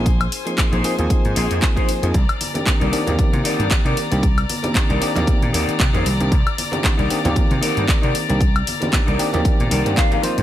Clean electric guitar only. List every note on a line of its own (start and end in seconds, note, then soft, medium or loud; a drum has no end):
0.45 muted clean electric guitar stroke loud
0.57 muted clean electric guitar stroke soft
0.72 0.91 D#4 medium
0.72 0.91 G#4 medium
0.72 0.92 C5 medium
1.10 muted clean electric guitar stroke soft
1.35 1.56 D#4 loud
1.35 1.57 G#4 loud
1.35 1.57 C5 loud
1.76 1.88 D#4 medium
1.76 1.89 G#4 medium
1.76 1.89 C5 loud
2.02 muted clean electric guitar stroke soft
2.54 muted clean electric guitar stroke loud
2.66 muted clean electric guitar stroke soft
2.80 3.00 D#4 medium
2.80 3.00 A#4 medium
2.80 3.01 D5 medium
3.18 muted clean electric guitar stroke soft
3.44 3.65 D#4 loud
3.44 3.65 A#4 loud
3.44 3.66 D5 loud
3.85 3.97 D#4 medium
3.85 3.97 A#4 medium
3.85 3.98 D5 medium
4.11 muted clean electric guitar stroke soft
4.63 muted clean electric guitar stroke loud
4.75 muted clean electric guitar stroke soft
4.89 5.08 D#4 medium
4.89 5.09 A#4 medium
4.89 5.09 D5 medium
5.27 muted clean electric guitar stroke soft
5.53 5.74 D#4 loud
5.53 5.74 A#4 loud
5.53 5.74 D5 loud
5.93 6.05 D#4 medium
5.93 6.06 A#4 medium
5.93 6.06 C5 medium
6.20 muted clean electric guitar stroke soft
6.71 muted clean electric guitar stroke loud
6.83 muted clean electric guitar stroke soft
6.97 7.17 D#4 medium
6.97 7.17 A#4 medium
6.97 7.18 D5 medium
7.35 muted clean electric guitar stroke soft
7.61 7.82 D#4 loud
7.61 7.82 A#4 loud
7.61 7.83 D5 loud
8.02 8.14 D#4 medium
8.02 8.14 A#4 medium
8.02 8.15 D5 medium
8.28 muted clean electric guitar stroke soft
8.80 muted clean electric guitar stroke loud
9.07 9.26 D#4 medium
9.07 9.26 A#4 medium
9.07 9.27 D5 medium
9.44 muted clean electric guitar stroke soft
9.71 9.91 D#4 loud
9.71 9.92 A#4 loud
9.71 9.92 D5 loud
9.71 9.96 G5 medium
9.98 10.12 F5 medium
10.11 10.23 D#4 medium
10.11 10.24 A#4 medium
10.11 10.24 F5 medium
10.24 10.38 D#5 medium
10.38 muted clean electric guitar stroke soft